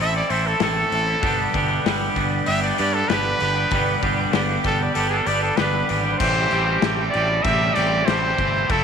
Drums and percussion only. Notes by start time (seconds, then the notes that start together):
0.30 open hi-hat
0.60 snare, open hi-hat
0.92 open hi-hat
1.23 kick, open hi-hat
1.54 kick, open hi-hat
1.86 snare, open hi-hat
2.16 kick, open hi-hat
2.46 open hi-hat
2.78 open hi-hat
3.10 snare, open hi-hat
3.40 open hi-hat
3.71 kick, open hi-hat
4.03 kick, open hi-hat
4.33 snare, open hi-hat
4.64 kick, snare, open hi-hat
4.95 open hi-hat
5.27 open hi-hat
5.57 snare, open hi-hat
5.89 open hi-hat
6.20 kick, crash
6.51 crash
6.82 snare, crash
7.14 crash
7.44 kick, crash
7.75 crash
8.08 snare, crash
8.38 kick, crash
8.70 kick, crash